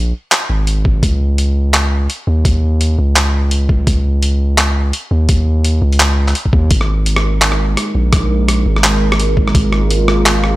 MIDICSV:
0, 0, Header, 1, 4, 480
1, 0, Start_track
1, 0, Tempo, 355030
1, 1391, Time_signature, 4, 2, 24, 8
1, 14280, End_track
2, 0, Start_track
2, 0, Title_t, "Analog synth pad"
2, 0, Program_c, 0, 89
2, 9065, Note_on_c, 0, 70, 92
2, 9066, Note_on_c, 0, 63, 73
2, 9071, Note_on_c, 0, 56, 80
2, 12871, Note_off_c, 0, 63, 0
2, 12916, Note_on_c, 0, 65, 79
2, 14280, Note_off_c, 0, 56, 0
2, 14280, Note_off_c, 0, 65, 0
2, 14280, Note_off_c, 0, 70, 0
2, 14280, End_track
3, 0, Start_track
3, 0, Title_t, "808-style bass"
3, 0, Program_c, 1, 38
3, 0, Note_on_c, 1, 34, 93
3, 175, Note_off_c, 1, 34, 0
3, 671, Note_on_c, 1, 32, 100
3, 1376, Note_off_c, 1, 32, 0
3, 1389, Note_on_c, 1, 37, 96
3, 2814, Note_off_c, 1, 37, 0
3, 3073, Note_on_c, 1, 39, 95
3, 4016, Note_off_c, 1, 39, 0
3, 4035, Note_on_c, 1, 37, 92
3, 5217, Note_off_c, 1, 37, 0
3, 5234, Note_on_c, 1, 37, 92
3, 6657, Note_off_c, 1, 37, 0
3, 6909, Note_on_c, 1, 39, 97
3, 7854, Note_off_c, 1, 39, 0
3, 7866, Note_on_c, 1, 37, 97
3, 8573, Note_off_c, 1, 37, 0
3, 8828, Note_on_c, 1, 39, 95
3, 9054, Note_off_c, 1, 39, 0
3, 9069, Note_on_c, 1, 32, 97
3, 10494, Note_off_c, 1, 32, 0
3, 10747, Note_on_c, 1, 34, 95
3, 11693, Note_off_c, 1, 34, 0
3, 11707, Note_on_c, 1, 32, 96
3, 12893, Note_off_c, 1, 32, 0
3, 12908, Note_on_c, 1, 32, 99
3, 14280, Note_off_c, 1, 32, 0
3, 14280, End_track
4, 0, Start_track
4, 0, Title_t, "Drums"
4, 429, Note_on_c, 9, 39, 115
4, 429, Note_on_c, 9, 42, 76
4, 564, Note_off_c, 9, 39, 0
4, 564, Note_off_c, 9, 42, 0
4, 909, Note_on_c, 9, 42, 64
4, 1044, Note_off_c, 9, 42, 0
4, 1150, Note_on_c, 9, 36, 100
4, 1285, Note_off_c, 9, 36, 0
4, 1390, Note_on_c, 9, 36, 109
4, 1391, Note_on_c, 9, 42, 72
4, 1525, Note_off_c, 9, 36, 0
4, 1526, Note_off_c, 9, 42, 0
4, 1870, Note_on_c, 9, 42, 63
4, 2005, Note_off_c, 9, 42, 0
4, 2350, Note_on_c, 9, 39, 114
4, 2350, Note_on_c, 9, 42, 78
4, 2485, Note_off_c, 9, 39, 0
4, 2485, Note_off_c, 9, 42, 0
4, 2835, Note_on_c, 9, 42, 61
4, 2970, Note_off_c, 9, 42, 0
4, 3312, Note_on_c, 9, 36, 107
4, 3316, Note_on_c, 9, 42, 74
4, 3448, Note_off_c, 9, 36, 0
4, 3451, Note_off_c, 9, 42, 0
4, 3796, Note_on_c, 9, 42, 66
4, 3931, Note_off_c, 9, 42, 0
4, 4273, Note_on_c, 9, 39, 116
4, 4273, Note_on_c, 9, 42, 74
4, 4408, Note_off_c, 9, 39, 0
4, 4408, Note_off_c, 9, 42, 0
4, 4749, Note_on_c, 9, 42, 61
4, 4884, Note_off_c, 9, 42, 0
4, 4992, Note_on_c, 9, 36, 97
4, 5127, Note_off_c, 9, 36, 0
4, 5233, Note_on_c, 9, 36, 110
4, 5233, Note_on_c, 9, 42, 71
4, 5368, Note_off_c, 9, 36, 0
4, 5368, Note_off_c, 9, 42, 0
4, 5713, Note_on_c, 9, 42, 67
4, 5848, Note_off_c, 9, 42, 0
4, 6192, Note_on_c, 9, 39, 115
4, 6192, Note_on_c, 9, 42, 77
4, 6328, Note_off_c, 9, 39, 0
4, 6328, Note_off_c, 9, 42, 0
4, 6670, Note_on_c, 9, 42, 61
4, 6806, Note_off_c, 9, 42, 0
4, 7148, Note_on_c, 9, 42, 75
4, 7150, Note_on_c, 9, 36, 107
4, 7283, Note_off_c, 9, 42, 0
4, 7286, Note_off_c, 9, 36, 0
4, 7632, Note_on_c, 9, 42, 68
4, 7768, Note_off_c, 9, 42, 0
4, 8011, Note_on_c, 9, 42, 38
4, 8110, Note_off_c, 9, 42, 0
4, 8110, Note_on_c, 9, 39, 115
4, 8110, Note_on_c, 9, 42, 79
4, 8245, Note_off_c, 9, 39, 0
4, 8245, Note_off_c, 9, 42, 0
4, 8492, Note_on_c, 9, 39, 35
4, 8492, Note_on_c, 9, 42, 37
4, 8588, Note_off_c, 9, 42, 0
4, 8588, Note_on_c, 9, 42, 65
4, 8627, Note_off_c, 9, 39, 0
4, 8723, Note_off_c, 9, 42, 0
4, 8728, Note_on_c, 9, 36, 56
4, 8828, Note_off_c, 9, 36, 0
4, 8828, Note_on_c, 9, 36, 99
4, 8963, Note_off_c, 9, 36, 0
4, 9066, Note_on_c, 9, 42, 76
4, 9069, Note_on_c, 9, 36, 116
4, 9201, Note_off_c, 9, 42, 0
4, 9204, Note_off_c, 9, 36, 0
4, 9206, Note_on_c, 9, 37, 54
4, 9341, Note_off_c, 9, 37, 0
4, 9548, Note_on_c, 9, 42, 71
4, 9683, Note_off_c, 9, 42, 0
4, 9687, Note_on_c, 9, 37, 78
4, 9822, Note_off_c, 9, 37, 0
4, 10027, Note_on_c, 9, 39, 114
4, 10027, Note_on_c, 9, 42, 83
4, 10162, Note_off_c, 9, 39, 0
4, 10162, Note_off_c, 9, 42, 0
4, 10165, Note_on_c, 9, 37, 53
4, 10300, Note_off_c, 9, 37, 0
4, 10508, Note_on_c, 9, 37, 53
4, 10508, Note_on_c, 9, 42, 66
4, 10643, Note_off_c, 9, 37, 0
4, 10643, Note_off_c, 9, 42, 0
4, 10986, Note_on_c, 9, 37, 76
4, 10986, Note_on_c, 9, 42, 78
4, 10990, Note_on_c, 9, 36, 115
4, 11121, Note_off_c, 9, 37, 0
4, 11121, Note_off_c, 9, 42, 0
4, 11125, Note_off_c, 9, 36, 0
4, 11472, Note_on_c, 9, 37, 55
4, 11472, Note_on_c, 9, 42, 74
4, 11607, Note_off_c, 9, 37, 0
4, 11607, Note_off_c, 9, 42, 0
4, 11850, Note_on_c, 9, 37, 52
4, 11949, Note_on_c, 9, 39, 120
4, 11949, Note_on_c, 9, 42, 84
4, 11985, Note_off_c, 9, 37, 0
4, 12085, Note_off_c, 9, 39, 0
4, 12085, Note_off_c, 9, 42, 0
4, 12331, Note_on_c, 9, 37, 82
4, 12433, Note_on_c, 9, 42, 67
4, 12466, Note_off_c, 9, 37, 0
4, 12568, Note_off_c, 9, 42, 0
4, 12669, Note_on_c, 9, 36, 103
4, 12804, Note_off_c, 9, 36, 0
4, 12811, Note_on_c, 9, 37, 53
4, 12909, Note_on_c, 9, 36, 118
4, 12909, Note_on_c, 9, 42, 75
4, 12946, Note_off_c, 9, 37, 0
4, 13044, Note_off_c, 9, 36, 0
4, 13045, Note_off_c, 9, 42, 0
4, 13149, Note_on_c, 9, 37, 49
4, 13284, Note_off_c, 9, 37, 0
4, 13392, Note_on_c, 9, 42, 69
4, 13527, Note_off_c, 9, 42, 0
4, 13630, Note_on_c, 9, 37, 80
4, 13765, Note_off_c, 9, 37, 0
4, 13871, Note_on_c, 9, 39, 124
4, 13871, Note_on_c, 9, 42, 80
4, 14006, Note_off_c, 9, 39, 0
4, 14006, Note_off_c, 9, 42, 0
4, 14110, Note_on_c, 9, 37, 48
4, 14245, Note_off_c, 9, 37, 0
4, 14280, End_track
0, 0, End_of_file